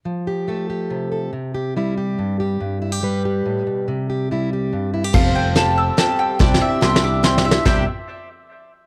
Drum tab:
CC |---------|---------|---------|---------|
HH |---------|---------|---------|---------|
SD |---------|---------|---------|---------|
BD |---------|---------|---------|---------|

CC |x--------|---------|---------|
HH |---x--x--|---------|---------|
SD |---o--o--|oo-oo-ooo|o--------|
BD |o--------|o--------|o--------|